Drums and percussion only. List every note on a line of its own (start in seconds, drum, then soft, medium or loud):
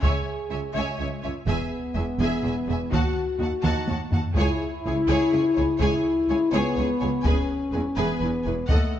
0.03 taiko medium
1.48 taiko medium
2.92 taiko medium
3.64 taiko mid medium
3.88 taiko high medium
4.12 taiko low medium
4.35 taiko medium
5.80 taiko medium
7.24 taiko medium
8.69 taiko medium